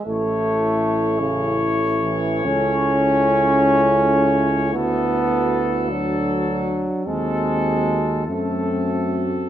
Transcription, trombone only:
X:1
M:6/8
L:1/8
Q:3/8=52
K:A
V:1 name="Trombone" clef=bass
A,3 C, z E, | C6 | B,3 F,3 | G,3 A,2 z |]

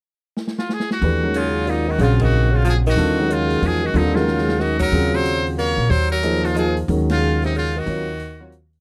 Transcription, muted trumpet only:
X:1
M:3/4
L:1/8
Q:"Swing" 1/4=184
K:Ebdor
V:1 name="Muted trumpet"
z3 F A G- | G2 F2 E G | F G2 F A G- | G2 F2 A G |
E F3 G B- | B c2 z d2 | c B2 F A z | z F2 E F G- |
G4 z2 |]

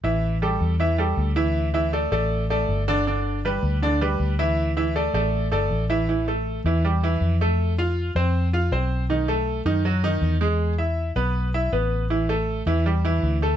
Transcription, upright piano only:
X:1
M:4/4
L:1/8
Q:1/4=159
K:Am
V:1 name="Upright piano"
[E,Ee]2 [G,GA]2 [E,Ee] [G,GA]2 [E,Ee]- | [E,Ee] [E,Ee] [A,Ad] [A,Ad]2 [A,Ad]2 [D,Dd] | [D,Dd]2 [G,GB]2 [D,Dd] [G,GB]2 [E,Ee]- | [E,Ee] [E,Ee] [A,Ad] [A,Ad]2 [A,Ad]2 [E,Ee] |
[E,E] [A,A]2 [E,E] [G,G] [E,E]2 [A,A]- | [A,A] [Ff]2 [Cc]2 [Ff] [Cc]2 | [^D,^D] [A,A]2 [D,D] [^F,^F] [D,D]2 [^G,^G]- | [^G,^G] [Ee]2 [B,B]2 [Ee] [B,B]2 |
[E,E] [A,A]2 [E,E] [G,G] [E,E]2 [A,A] |]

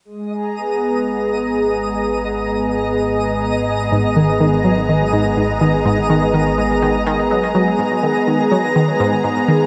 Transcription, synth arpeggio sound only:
X:1
M:4/4
L:1/8
Q:1/4=124
K:G#m
V:1 name="Synth arpeggio sound" clef=bass
z8 | z8 | G,, D, D, F, D, G,, G,, D, | G,, D, D, G,, D, D, F, F, |
G,, D, D, F, D, G,, G,, D, |]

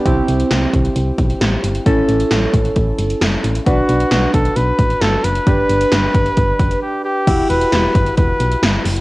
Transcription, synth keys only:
X:1
M:4/4
L:1/8
Q:1/4=133
K:Em
V:1 name="Synth keys"
[CEG]8 | [^CEA]8 | [DFB]8 | [DGB]8 |
[EFG]8 |]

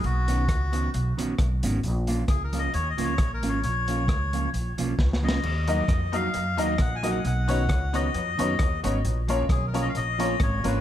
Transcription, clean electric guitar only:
X:1
M:4/4
L:1/8
Q:"Swing" 1/4=133
K:Bbphr
V:1 name="Clean electric guitar"
z [^D,=B,^C^F] z [D,B,CF] z [D,B,CF] z [D,B,CF] | z [F,B,DF] z [F,B,DF] z [F,B,DF] z [F,B,DF] | z [F,B,DF] z [F,B,DF] z [F,B,DF] z [F,B,DF] | z [G,B,EG] z [G,B,EG] z [G,B,EG] z [G,B,EG] |
z [^D,=B,^C^F] z [D,B,CF] z [D,B,CF] z [D,B,CF] | z [F,B,DF] z [F,B,DF] z [F,B,DF] z [F,B,DF] |]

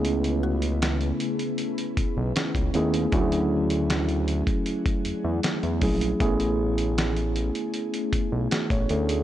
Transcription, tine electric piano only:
X:1
M:4/4
L:1/16
Q:1/4=78
K:A
V:1 name="Tine electric piano"
[A,B,CEG]4 z8 z2 [A,B,CEG]2 | [F,A,CEFG]6 z8 [F,A,CEG]2 | [A,B,CEG]6 z6 z c A G |]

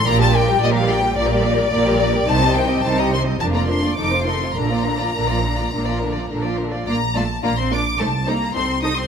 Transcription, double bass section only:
X:1
M:4/4
L:1/8
Q:1/4=107
K:Bb
V:1 name="Double bass section" clef=bass
B,,,2 B,,,2 B,,,2 B,,,2 | C,,2 C,,2 F,,,2 F,,,2 | B,,,2 B,,,2 B,,,2 B,,,2 | B,,,2 B,,,2 C,,2 C,,2 |]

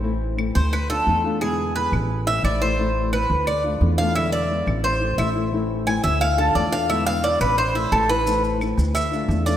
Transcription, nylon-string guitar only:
X:1
M:4/4
L:1/8
Q:1/4=175
K:Am
V:1 name="Nylon-string guitar"
[E,A,CE]2 [E,A,CE]2 z [A,DF] [D,A,DF] [A,DF] | [B,,D,^G,B,E]2 [D,G,B,E]2 z [A,CE] [E,A,CE] [A,CE] | [E,A,CE]2 [E,A,CE]2 z [A,DF] [D,A,DF] [A,DF] | [B,,D,^G,B,E]2 [D,G,B,E]2 z [A,CE] [E,A,CE] [A,CE] |
[E,A,CE]2 [E,A,CE]2 z [A,DF] [D,A,DF] [A,DF] | [B,,D,^G,B,E]2 [D,G,B,E]2 z [A,CE] [E,A,CE] [A,CE] | [E,A,CE]2 [E,A,CE]2 z [A,DF] [D,A,DF] [A,DF] |]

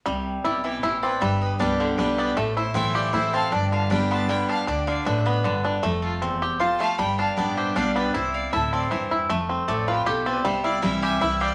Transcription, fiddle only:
X:1
M:3/4
L:1/8
Q:1/4=156
K:C
V:1 name="Fiddle"
z2 G G G B | B B B A G B | A c e d c f | d f g a g f |
d d B B B G | A F z2 a f | g f d c d B | c d e d c z |
z2 A G A B | c d e e e d |]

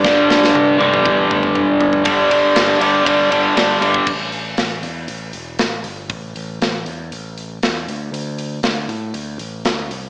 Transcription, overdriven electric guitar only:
X:1
M:4/4
L:1/8
Q:1/4=118
K:G
V:1 name="Overdriven electric guitar" clef=bass
[G,,D,G,]3 [G,,D,G,]4- [G,,D,G,] | [G,,D,G,] [G,,D,G,] [G,,D,G,] [G,,D,G,] [G,,D,G,] [G,,D,G,] [G,,D,G,] [G,,D,G,] | [K:Am] z8 | z8 |
z8 |]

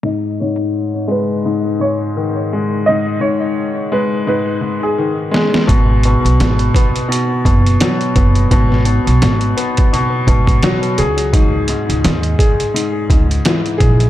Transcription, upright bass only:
X:1
M:4/4
L:1/16
Q:"Swing 16ths" 1/4=85
K:G#m
V:1 name="Upright bass" clef=bass
z16 | z16 | G,,,3 B,,, G,,,2 z4 F,,,2 z2 F,,,2 | G,,,3 B,,, G,,,2 z4 G,,,2 z2 C,,2- |
C,,3 C,, D,,2 z4 C,,2 z2 A,,,2 |]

